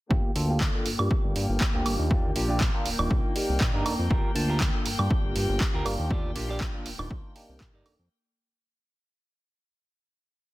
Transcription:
0.10 analog synth bass G1, clean electric guitar A#3 F4 G4, string section A#3 G5, kick
0.35 analog synth bass D2, tine electric piano A#3 D4 F4 A4, open hi-hat
0.49 clean electric guitar A#3 F4 G4
0.61 kick, clap
0.74 tine electric piano A#3 D4 F4 A4, muted clean electric guitar stroke
0.85 analog synth bass G2, muted clean electric guitar stroke, open hi-hat
0.98 analog synth bass G2, tine electric piano A#3 D4 F4 G4, muted clean electric guitar stroke, high woodblock
1.11 analog synth bass G1, kick
1.24 analog synth bass G1
1.35 analog synth bass G2, muted clean electric guitar stroke, open hi-hat
1.49 analog synth bass G1
1.60 muted clean electric guitar stroke, kick, clap
1.73 analog synth bass D2, clean electric guitar A#3 F4 G4
1.85 analog synth bass G1, tine electric piano A#3 D4 F4 G4, open hi-hat, high woodblock
1.99 analog synth bass D#2
2.10 clean electric guitar D4 F4 G4, kick
2.35 analog synth bass A#1, tine electric piano A#3 D4 F4 G4, open hi-hat
2.49 clean electric guitar D4 F4 G4
2.61 kick, clap
2.74 tine electric piano A#3 D4 F4 A#4, muted clean electric guitar stroke
2.85 analog synth bass D#1, muted clean electric guitar stroke, open hi-hat
2.98 analog synth bass D#1, tine electric piano A#3 D4 D#4 F4, muted clean electric guitar stroke, high woodblock
3.11 analog synth bass C2, kick
3.35 tine electric piano A#3 D#4 G4 D5, muted clean electric guitar stroke, open hi-hat
3.49 analog synth bass C2
3.60 analog synth bass A#2, muted clean electric guitar stroke, kick, clap
3.73 analog synth bass G2, tine electric piano A#3 D4 D#4 G4, clean electric guitar D4 D#4 A#4
3.85 analog synth bass F2, tine electric piano A#3 D4 D#4 A4, open hi-hat, high woodblock
3.99 analog synth bass F2
4.10 analog synth bass G1, clean electric guitar F4 G4 A#4, kick
4.35 analog synth bass D2, tine electric piano A#3 D4 F4 A5, open hi-hat
4.49 clean electric guitar F4 G4 A#4
4.60 kick, clap
4.74 tine electric piano A#3 D4 F4 A4, muted clean electric guitar stroke
4.85 analog synth bass G2, muted clean electric guitar stroke, open hi-hat
4.98 analog synth bass G2, tine electric piano A#3 D4 F4 G4, muted clean electric guitar stroke, high woodblock
5.11 analog synth bass G1, kick
5.24 analog synth bass G1
5.35 analog synth bass G2, muted clean electric guitar stroke, open hi-hat
5.49 analog synth bass G1
5.60 muted clean electric guitar stroke, kick, clap
5.73 analog synth bass D2, clean electric guitar F4 G4 A#4
5.85 analog synth bass G1, tine electric piano A#3 D4 F4 G4, open hi-hat, high woodblock
5.99 analog synth bass D#2
6.10 clean electric guitar F4 G4 D5, kick
6.35 analog synth bass A#1, tine electric piano A#3 D4 F4 G4, open hi-hat
6.48 clean electric guitar F4 G4 D5
6.61 kick, clap
6.73 tine electric piano A#3 D4 F4 A#4, muted clean electric guitar stroke
6.85 analog synth bass D#1, muted clean electric guitar stroke, open hi-hat
6.98 analog synth bass D#1, tine electric piano A#3 D4 D#4 F4, muted clean electric guitar stroke, high woodblock
7.11 analog synth bass C2, kick
7.35 tine electric piano A#3 D4 D#4 G4, muted clean electric guitar stroke, open hi-hat
7.49 analog synth bass C2
7.60 analog synth bass A#2, muted clean electric guitar stroke, kick, clap
7.73 analog synth bass G2, tine electric piano A#3 D4 D#4 G4, clean electric guitar D#4 A#4 D5
7.85 analog synth bass F2, tine electric piano A#3 D4 D#4 A4, open hi-hat, high woodblock
7.99 analog synth bass F2

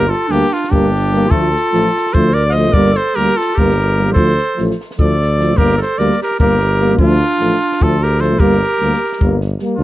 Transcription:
Already playing: tuba G1, cornet A#4
0.08 clarinet F4, cornet A4
0.27 tuba D2, euphonium G3, trombone A#3, clarinet D4, cornet G4
0.32 snare
0.43 snare
0.48 clarinet D4
0.53 cornet F4, snare
0.64 clarinet D4, snare
0.71 tuba G1, euphonium G3, trombone A#3, cornet G4, kick
0.95 snare
1.12 euphonium G3, trombone A#3, snare
1.28 euphonium F3, trombone A3, clarinet F4, cornet A4, kick
1.32 tuba D2
1.56 snare
1.73 tuba A1, euphonium F3, trombone A3, snare
1.86 snare
1.97 snare
2.06 snare
2.13 tuba D2, euphonium F3, trombone A3, clarinet A4, cornet C5, kick
2.33 clarinet A#4, cornet D5
2.46 clarinet D5, cornet F5
2.52 euphonium F3, clarinet C5, cornet D#5, snare
2.56 trombone A3
2.72 tuba G1, euphonium G3, trombone A#3, clarinet A#4, cornet D5, kick
2.85 snare
2.92 clarinet A4, cornet C5, snare
3.06 snare
3.15 tuba D2, euphonium G3, trombone A#3, clarinet G4, cornet A#4, snare
3.27 snare
3.36 clarinet F4, cornet A4
3.41 snare
3.50 snare
3.55 tuba G1, euphonium G3, trombone A#3, clarinet G4, cornet A#4, kick
3.70 snare
3.80 snare
3.98 euphonium G3, trombone A#3
4.13 tuba D2, euphonium F3, trombone A3, clarinet A4, cornet C5, kick
4.38 snare
4.56 tuba A1, euphonium F3, trombone A3, snare
4.71 snare
4.81 snare
4.91 snare
4.98 tuba D2, euphonium F3, trombone A3, clarinet A4, cornet D5, kick
5.22 snare
5.38 euphonium F3, trombone A3, snare
5.57 tuba G1, euphonium G3, trombone A#3, clarinet G4, cornet A#4, kick
5.78 clarinet A4, snare
5.82 cornet C5
5.98 tuba D2, euphonium G3, trombone A#3, clarinet A#4, cornet D5, snare
6.12 snare
6.22 clarinet G4, cornet A#4, snare
6.31 snare
6.39 tuba G1, euphonium G3, trombone A#3, clarinet G4, cornet A#4, kick
6.60 snare
6.80 euphonium G3, trombone A#3, snare
6.98 tuba D2, euphonium F3, trombone A3, clarinet D4, cornet F4, kick
7.23 snare
7.39 tuba A1, euphonium F3, trombone A3, snare
7.53 snare
7.72 snare
7.81 tuba D2, euphonium F3, trombone A3, clarinet F4, cornet A4, kick
8.03 clarinet G4, cornet A#4, snare
8.19 euphonium F3, trombone A3, clarinet A4, cornet C5, snare
8.39 tuba G1, euphonium G3, trombone A#3, clarinet G4, cornet A#4, kick
8.52 snare
8.63 snare
8.72 snare
8.79 tuba D2, euphonium G3, trombone A#3, snare
8.93 snare
9.04 snare
9.12 snare
9.20 tuba G1, euphonium G3, trombone A#3, kick
9.41 snare
9.59 euphonium G3, trombone A#3, snare
9.77 tuba D2, clarinet D4, cornet F4

